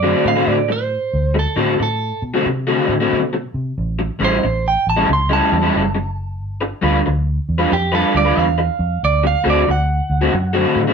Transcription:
Already playing: F#2 D5
0.03 D3 A3 C4 F#4
0.25 A2 F5
0.36 D3 A3 C4 F#4
0.47 A2 D5
0.69 C5, muted overdriven electric guitar stroke
1.13 D2
1.34 muted overdriven electric guitar stroke
1.39 A4
1.56 A2 D3 A3 C4 F#4
1.79 A2 A4, muted overdriven electric guitar stroke
2.22 B2
2.34 D3 A3 C4 F#4
2.46 C3, muted overdriven electric guitar stroke
2.67 D3 A3 C4 F#4
2.89 A2
3.00 D3 A3 C4 F#4
3.13 B2
3.33 muted overdriven electric guitar stroke
3.54 C3
3.78 A1
3.99 muted overdriven electric guitar stroke
4.19 A1 A2 G3 C#4 E4
4.24 C5
4.43 A1, muted overdriven electric guitar stroke
4.68 G5
4.87 A1 A5
4.97 A2 G3 C#4 E4
5.08 C#2, muted overdriven electric guitar stroke
5.13 C6
5.29 A2 G3 C#4 E4 A5
5.52 E2
5.62 A2 G3 C#4 E4
5.76 F#1
5.95 muted overdriven electric guitar stroke
6.41 G1
6.61 muted overdriven electric guitar stroke
6.82 D2 G3 D4 F4 B4
7.06 D2, muted overdriven electric guitar stroke
7.49 E2
7.58 G3 D4 F4 B4
7.71 F2 G4, muted overdriven electric guitar stroke
7.92 G3 D4 F4 A4 B4
8.14 D2 D5
8.25 G3 D4 F4 B4
8.37 E2 F5
8.58 muted overdriven electric guitar stroke
8.79 F2
9.03 D2 D5
9.24 F5, muted overdriven electric guitar stroke
9.44 D2 D3 A3 C4 F#4
9.50 D5
9.68 D2 F#5, muted overdriven electric guitar stroke
10.10 D2
10.21 D3 A3 C4 F#4
10.33 F#2, muted overdriven electric guitar stroke
10.53 D3 A3 C4 F#4
10.76 A2
10.87 D3 A3 C4 F#4

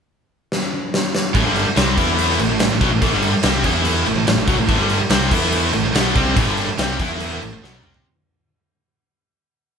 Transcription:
0.52 snare
0.94 snare
1.15 snare
1.35 A1 A2 E3, kick, crash
1.45 G1 G2 D3 G3
1.56 crash
1.66 muted distorted electric guitar stroke, muted picked electric bass stroke
1.76 C2 C3 G3 C4, snare, crash
1.97 E2 E3 B3 E4, kick, crash
2.19 crash
2.30 snare
2.39 A1 A2 E3, crash
2.50 A1 A2 E3
2.59 A1 A2 E3, snare, crash
2.71 A1 A2 E3
2.81 B1 B2 F#3, kick, crash
2.92 A1 A2 E3
3.02 A1 A2 E3, kick, crash
3.13 G1 G2 D3 G3
3.22 crash
3.34 muted distorted electric guitar stroke, muted picked electric bass stroke
3.43 C2 C3 G3 C4, snare, crash
3.64 E2 E3 B3 E4, kick, crash
3.85 crash
4.06 A1 A2 E3, crash
4.17 A1 A2 E3
4.27 A1 A2 E3, snare, crash
4.37 A1 A2 E3
4.48 B1 B2 F#3, kick, crash
4.59 A1 A2 E3
4.69 A1 A2 E3, kick, crash
4.78 G1 G2 D3 G3
4.89 crash
5.00 muted picked electric bass stroke, muted distorted electric guitar stroke
5.10 C2 C3 G3 C4, snare, crash
5.31 E2 E3 B3 E4, kick, crash
5.52 crash
5.73 A1 A2 E3, crash
5.84 A1 A2 E3
5.94 B1 B2 F#3 B3, snare, crash
6.15 C2 C3 G3 C4, kick, crash
6.37 A1 A2 E3, kick, crash
6.46 G1 G2 D3 G3
6.57 crash
6.69 muted picked electric bass stroke, muted distorted electric guitar stroke
6.78 C2 C3 G3 C4, snare, crash
6.99 E2 E3 B3 E4, kick, crash
7.20 crash
7.42 A1 A2 E3, crash
7.53 A1 A2 E3
7.63 B1 B2 F#3 B3, snare
7.83 C2 C3 G3 C4, mid tom
7.94 floor tom

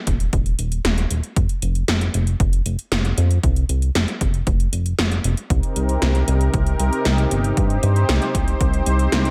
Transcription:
0.07 D#1, kick, closed hi-hat
0.20 closed hi-hat
0.33 D#1, kick, closed hi-hat
0.46 closed hi-hat
0.59 D#1, closed hi-hat
0.72 closed hi-hat
0.84 D#1, snare, closed hi-hat
0.98 closed hi-hat
1.11 D#1, closed hi-hat
1.24 closed hi-hat
1.36 F1, kick, closed hi-hat
1.49 closed hi-hat
1.62 F1, closed hi-hat
1.75 closed hi-hat
1.88 F1, snare, closed hi-hat
2.01 closed hi-hat
2.14 F1, closed hi-hat
2.27 closed hi-hat
2.40 F1, kick, closed hi-hat
2.53 closed hi-hat
2.66 F1, closed hi-hat
2.79 closed hi-hat
2.92 F1, snare, closed hi-hat
3.05 closed hi-hat
3.18 F2, closed hi-hat
3.31 closed hi-hat
3.43 C2, kick, closed hi-hat
3.56 closed hi-hat
3.69 C2, closed hi-hat
3.82 closed hi-hat
3.95 F1, snare, closed hi-hat
4.08 closed hi-hat
4.21 F1, kick, closed hi-hat
4.34 closed hi-hat
4.47 F1, kick, closed hi-hat
4.60 closed hi-hat
4.73 F1, closed hi-hat
4.86 closed hi-hat
4.99 F1, snare, closed hi-hat
5.12 closed hi-hat
5.24 F1, closed hi-hat
5.37 closed hi-hat
5.50 C2 C3 C4 D#4 G4 A#4, kick, closed hi-hat
5.63 closed hi-hat
5.76 C2, closed hi-hat
5.89 closed hi-hat
6.02 C2, snare, closed hi-hat
6.15 closed hi-hat
6.28 C2, closed hi-hat
6.41 closed hi-hat
6.54 C2, kick, closed hi-hat
6.67 closed hi-hat
6.79 C2, closed hi-hat
6.93 closed hi-hat
7.05 C2, snare, closed hi-hat
7.18 closed hi-hat
7.31 G1, closed hi-hat
7.44 closed hi-hat
7.57 G2 C5, kick, closed hi-hat
7.70 closed hi-hat
7.83 G2, closed hi-hat
7.96 closed hi-hat
8.09 C2, snare, closed hi-hat
8.22 closed hi-hat
8.35 C2, kick, closed hi-hat
8.48 closed hi-hat
8.61 C2, kick, closed hi-hat
8.74 closed hi-hat
8.86 C2, closed hi-hat
8.99 closed hi-hat
9.12 C2, snare, closed hi-hat
9.25 closed hi-hat

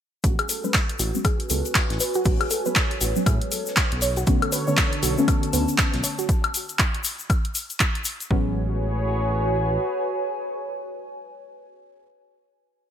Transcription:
0.24 A1 F#3 G#3 B3 C#4 F#4, kick, closed hi-hat, shaker
0.39 G#4, closed hi-hat, high woodblock
0.49 A4, closed hi-hat, open hi-hat, shaker
0.64 F#3 G#3 B3 C#4 B4, shaker
0.74 B4, kick, snare, clap, closed hi-hat, shaker
0.89 closed hi-hat
0.99 A1 F#4, closed hi-hat, open hi-hat, shaker
1.15 F#3 G#3 B3 C#4, shaker
1.20 C#5 G#5
1.25 G#4, kick, closed hi-hat, high woodblock, shaker
1.40 closed hi-hat
1.50 C#2 F#3 G#3 B3 C#4 A4, closed hi-hat, open hi-hat, shaker
1.65 closed hi-hat, shaker
1.75 kick, snare, clap, closed hi-hat, shaker
1.90 A1, snare, closed hi-hat
2.00 B4, closed hi-hat, open hi-hat, shaker
2.14 F#4, closed hi-hat, shaker
2.25 A1 F#3 G#3 B3 C#4 F#4, kick, closed hi-hat, open hi-hat, shaker
2.41 G#4, closed hi-hat, high woodblock
2.50 A4, closed hi-hat, open hi-hat, shaker
2.66 F#3 G#3 B3 C#4 B4, shaker
2.76 kick, snare, clap, closed hi-hat, shaker
2.91 closed hi-hat
3.01 A1 F#4, closed hi-hat, open hi-hat, shaker
3.16 F#3 G#3 B3 C#4, shaker
3.26 A2 G#4, kick, closed hi-hat, high woodblock, shaker
3.41 closed hi-hat
3.52 A4, closed hi-hat, open hi-hat, shaker
3.66 snare, shaker
3.76 kick, snare, clap, closed hi-hat, shaker
3.92 B1, closed hi-hat
4.01 D3 C#5, closed hi-hat, open hi-hat, shaker
4.16 F#4, closed hi-hat, shaker
4.27 B1 D3 A3 B3 C#4 F#4 A4 C#5, kick, closed hi-hat, shaker
4.42 A4, closed hi-hat, high woodblock
4.52 B4, closed hi-hat, open hi-hat, shaker
4.67 D3 A3 B3 C#4 C#5, shaker
4.77 kick, snare, clap, closed hi-hat, shaker
4.93 closed hi-hat
5.03 B1 F#4 A5, closed hi-hat, open hi-hat, shaker
5.18 D3 A3 B3 C#4, shaker
5.28 A4, kick, closed hi-hat, high woodblock, shaker
5.43 closed hi-hat
5.53 D2 D3 A3 B3 C#4 B4, closed hi-hat, open hi-hat, shaker
5.68 closed hi-hat, shaker
5.78 kick, snare, clap, closed hi-hat, shaker
5.93 B1, snare, closed hi-hat
6.04 C#5, closed hi-hat, open hi-hat, shaker
6.19 F#4, closed hi-hat, shaker
6.29 kick, closed hi-hat, shaker
6.44 closed hi-hat, high woodblock
6.54 open hi-hat, shaker
6.69 closed hi-hat, shaker
6.79 kick, clap, closed hi-hat, shaker
6.94 closed hi-hat
7.04 open hi-hat, shaker
7.19 shaker
7.30 kick, closed hi-hat, high woodblock, shaker
7.45 closed hi-hat
7.55 open hi-hat, shaker
7.70 closed hi-hat, shaker
7.80 kick, clap, closed hi-hat, shaker
7.95 closed hi-hat
8.05 open hi-hat, shaker
8.20 closed hi-hat, shaker
8.30 A1 F#3 G#3 B3 C#4 F#4 G#4 B4 C#5, kick
8.40 B4
8.48 C#5
8.54 G#5

